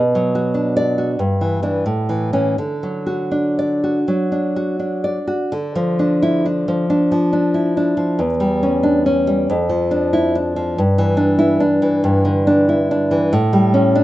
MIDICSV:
0, 0, Header, 1, 2, 480
1, 0, Start_track
1, 0, Key_signature, 2, "major"
1, 0, Tempo, 626305
1, 906, Tempo, 674157
1, 1386, Tempo, 735294
1, 1857, Time_signature, 4, 2, 24, 8
1, 3786, Tempo, 679502
1, 3787, Key_signature, -1, "minor"
1, 4746, Tempo, 650054
1, 7626, Tempo, 630915
1, 10095, End_track
2, 0, Start_track
2, 0, Title_t, "Nylon-string guitar"
2, 0, Program_c, 0, 24
2, 0, Note_on_c, 0, 47, 52
2, 115, Note_on_c, 0, 54, 43
2, 269, Note_on_c, 0, 66, 44
2, 416, Note_on_c, 0, 62, 41
2, 587, Note_on_c, 0, 74, 60
2, 742, Note_off_c, 0, 66, 0
2, 751, Note_on_c, 0, 66, 39
2, 829, Note_off_c, 0, 54, 0
2, 844, Note_off_c, 0, 74, 0
2, 881, Note_off_c, 0, 47, 0
2, 906, Note_off_c, 0, 62, 0
2, 911, Note_off_c, 0, 66, 0
2, 912, Note_on_c, 0, 43, 48
2, 1070, Note_on_c, 0, 52, 33
2, 1213, Note_off_c, 0, 52, 0
2, 1222, Note_on_c, 0, 52, 35
2, 1225, Note_on_c, 0, 62, 51
2, 1369, Note_off_c, 0, 52, 0
2, 1371, Note_off_c, 0, 62, 0
2, 1375, Note_off_c, 0, 43, 0
2, 1387, Note_on_c, 0, 45, 40
2, 1540, Note_on_c, 0, 52, 33
2, 1688, Note_off_c, 0, 52, 0
2, 1695, Note_on_c, 0, 52, 33
2, 1696, Note_on_c, 0, 61, 48
2, 1840, Note_off_c, 0, 52, 0
2, 1840, Note_off_c, 0, 61, 0
2, 1843, Note_off_c, 0, 45, 0
2, 1860, Note_on_c, 0, 50, 42
2, 2022, Note_on_c, 0, 54, 35
2, 2175, Note_on_c, 0, 66, 36
2, 2338, Note_on_c, 0, 62, 37
2, 2516, Note_on_c, 0, 74, 48
2, 2671, Note_off_c, 0, 66, 0
2, 2679, Note_on_c, 0, 66, 37
2, 2757, Note_off_c, 0, 54, 0
2, 2774, Note_off_c, 0, 74, 0
2, 2812, Note_off_c, 0, 50, 0
2, 2837, Note_on_c, 0, 54, 34
2, 2985, Note_off_c, 0, 62, 0
2, 2993, Note_on_c, 0, 62, 33
2, 3145, Note_off_c, 0, 66, 0
2, 3153, Note_on_c, 0, 66, 38
2, 3296, Note_off_c, 0, 62, 0
2, 3304, Note_on_c, 0, 62, 31
2, 3465, Note_on_c, 0, 74, 36
2, 3555, Note_off_c, 0, 54, 0
2, 3610, Note_off_c, 0, 66, 0
2, 3618, Note_on_c, 0, 66, 39
2, 3778, Note_off_c, 0, 66, 0
2, 3778, Note_on_c, 0, 50, 48
2, 3782, Note_off_c, 0, 62, 0
2, 3782, Note_off_c, 0, 74, 0
2, 3943, Note_on_c, 0, 53, 49
2, 4110, Note_on_c, 0, 62, 40
2, 4275, Note_on_c, 0, 64, 52
2, 4429, Note_off_c, 0, 62, 0
2, 4435, Note_off_c, 0, 64, 0
2, 4437, Note_on_c, 0, 62, 43
2, 4588, Note_off_c, 0, 53, 0
2, 4596, Note_on_c, 0, 53, 42
2, 4714, Note_off_c, 0, 50, 0
2, 4742, Note_off_c, 0, 62, 0
2, 4750, Note_on_c, 0, 62, 47
2, 4902, Note_off_c, 0, 53, 0
2, 4911, Note_on_c, 0, 53, 39
2, 5059, Note_off_c, 0, 62, 0
2, 5068, Note_on_c, 0, 62, 45
2, 5226, Note_on_c, 0, 64, 35
2, 5386, Note_off_c, 0, 62, 0
2, 5395, Note_on_c, 0, 62, 39
2, 5534, Note_off_c, 0, 53, 0
2, 5542, Note_on_c, 0, 53, 40
2, 5703, Note_on_c, 0, 40, 55
2, 5708, Note_off_c, 0, 53, 0
2, 5711, Note_off_c, 0, 64, 0
2, 5715, Note_off_c, 0, 62, 0
2, 5860, Note_on_c, 0, 55, 48
2, 6028, Note_on_c, 0, 61, 43
2, 6179, Note_on_c, 0, 62, 49
2, 6338, Note_off_c, 0, 61, 0
2, 6344, Note_off_c, 0, 62, 0
2, 6347, Note_on_c, 0, 61, 48
2, 6495, Note_off_c, 0, 55, 0
2, 6504, Note_on_c, 0, 55, 48
2, 6642, Note_off_c, 0, 40, 0
2, 6669, Note_on_c, 0, 41, 62
2, 6670, Note_off_c, 0, 55, 0
2, 6672, Note_off_c, 0, 61, 0
2, 6816, Note_on_c, 0, 53, 40
2, 6975, Note_on_c, 0, 62, 45
2, 7138, Note_on_c, 0, 64, 52
2, 7293, Note_off_c, 0, 62, 0
2, 7302, Note_on_c, 0, 62, 41
2, 7304, Note_off_c, 0, 64, 0
2, 7448, Note_off_c, 0, 53, 0
2, 7457, Note_on_c, 0, 53, 45
2, 7596, Note_off_c, 0, 41, 0
2, 7620, Note_on_c, 0, 43, 55
2, 7621, Note_off_c, 0, 53, 0
2, 7623, Note_off_c, 0, 62, 0
2, 7771, Note_on_c, 0, 52, 48
2, 7913, Note_on_c, 0, 62, 47
2, 8078, Note_on_c, 0, 64, 52
2, 8234, Note_off_c, 0, 62, 0
2, 8243, Note_on_c, 0, 62, 49
2, 8249, Note_off_c, 0, 64, 0
2, 8399, Note_off_c, 0, 52, 0
2, 8408, Note_on_c, 0, 52, 47
2, 8552, Note_off_c, 0, 43, 0
2, 8573, Note_on_c, 0, 43, 59
2, 8733, Note_on_c, 0, 50, 43
2, 8893, Note_off_c, 0, 62, 0
2, 8903, Note_on_c, 0, 62, 52
2, 9068, Note_on_c, 0, 64, 36
2, 9149, Note_off_c, 0, 52, 0
2, 9229, Note_off_c, 0, 62, 0
2, 9238, Note_on_c, 0, 62, 49
2, 9390, Note_on_c, 0, 52, 51
2, 9468, Note_off_c, 0, 50, 0
2, 9520, Note_off_c, 0, 43, 0
2, 9552, Note_off_c, 0, 64, 0
2, 9553, Note_off_c, 0, 52, 0
2, 9554, Note_on_c, 0, 45, 66
2, 9557, Note_off_c, 0, 62, 0
2, 9708, Note_on_c, 0, 55, 56
2, 9867, Note_on_c, 0, 61, 54
2, 10032, Note_on_c, 0, 62, 53
2, 10095, Note_off_c, 0, 45, 0
2, 10095, Note_off_c, 0, 55, 0
2, 10095, Note_off_c, 0, 61, 0
2, 10095, Note_off_c, 0, 62, 0
2, 10095, End_track
0, 0, End_of_file